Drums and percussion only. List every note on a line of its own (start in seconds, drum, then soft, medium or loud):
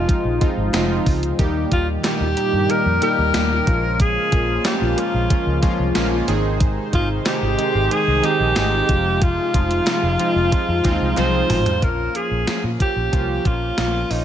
0.09 kick medium
0.09 closed hi-hat loud
0.41 kick medium
0.41 closed hi-hat medium
0.74 snare loud
0.74 clap medium
0.74 closed hi-hat medium
0.74 tambourine medium
1.06 kick medium
1.06 open hi-hat medium
1.23 closed hi-hat medium
1.39 kick loud
1.39 closed hi-hat loud
1.72 kick medium
1.72 closed hi-hat medium
2.04 snare loud
2.04 clap medium
2.04 closed hi-hat medium
2.04 tambourine medium
2.37 closed hi-hat medium
2.70 closed hi-hat loud
3.02 closed hi-hat medium
3.34 snare loud
3.34 clap medium
3.34 closed hi-hat medium
3.34 tambourine medium
3.67 kick medium
3.67 closed hi-hat medium
4.00 kick loud
4.00 closed hi-hat loud
4.32 kick medium
4.32 closed hi-hat medium
4.65 snare loud
4.65 clap medium
4.65 closed hi-hat medium
4.65 tambourine medium
4.98 closed hi-hat medium
5.30 kick medium
5.30 closed hi-hat loud
5.63 kick loud
5.63 closed hi-hat medium
5.95 snare loud
5.95 clap medium
5.95 closed hi-hat medium
5.95 tambourine medium
6.28 closed hi-hat medium
6.60 kick loud
6.60 closed hi-hat medium
6.93 kick medium
6.93 closed hi-hat medium
7.26 snare loud
7.26 clap medium
7.26 closed hi-hat medium
7.26 tambourine medium
7.59 closed hi-hat medium
7.91 closed hi-hat medium
8.24 closed hi-hat medium
8.56 snare loud
8.56 clap medium
8.56 closed hi-hat medium
8.56 tambourine medium
8.89 kick medium
8.89 closed hi-hat medium
9.22 kick loud
9.22 closed hi-hat loud
9.54 kick medium
9.54 closed hi-hat medium
9.71 closed hi-hat medium
9.87 snare loud
9.87 clap medium
9.87 closed hi-hat medium
9.87 tambourine medium
10.19 closed hi-hat medium
10.52 kick loud
10.52 closed hi-hat loud
10.84 kick loud
10.84 clap medium
10.84 closed hi-hat medium
11.17 clap medium
11.17 closed hi-hat medium
11.17 high tom medium
11.50 mid tom loud
11.50 open hi-hat medium
11.66 closed hi-hat medium
11.66 floor tom loud
11.82 kick loud
11.82 closed hi-hat medium
12.15 closed hi-hat medium
12.47 snare loud
12.47 closed hi-hat medium
12.80 kick medium
12.80 closed hi-hat medium
13.13 kick medium
13.13 closed hi-hat medium
13.45 kick medium
13.45 closed hi-hat medium
13.78 snare loud
13.78 closed hi-hat medium
14.11 open hi-hat medium